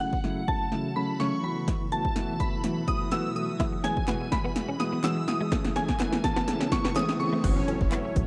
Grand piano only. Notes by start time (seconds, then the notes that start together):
0.00 C#3 F#3 A3 E4
0.24 C#3 F#3 A3 E4
0.48 C#3 F#3 A3 E4
0.72 C#3 F#3 A3 E4
0.96 C#3 F#3 A3 C#4
1.20 C#3 F#3 A3 C#4
1.43 E3 A3 B3 F#4
1.91 E3 A3 B3 F#4
2.16 E3 A3 B3 F#4
2.39 E3 A3 B3 F#4
2.64 E3 A3 B3 F#4
2.88 E3 A3 B3 F#4
3.11 E3 A3 B3 F#4
3.35 E3 A3 B3 F#4
3.59 E3 G#3 B3 F#4
3.84 E3 G#3 B3 G#4
4.07 E3 G#3 B3 F#4
4.32 E3 G#3
4.56 E3 G#3 B3 F#4
4.80 E3 G#3 B3 F#4
5.03 E3 G#3 B3 F#4
5.27 E3 G#3 B3 F#4
5.52 E3 A3 C#4 G#4
5.76 E3 A3 C#4 G#4
5.99 E3 A3 C#4 B4
6.24 E3 A3 G#4
6.48 E3 A3 C#4 G#4
6.72 E3 A3 C#4 G#4
6.96 E3 A3 C#4 G#4
7.20 E3 A3 C#4 G#4
7.43 E3 F#3 A3 C#4 F#4
7.68 E3 F#3 A3 C#4 A4
7.91 E3 F#3 A3 C#4 F#4
8.15 E3 F#3 A3 C#4 F#4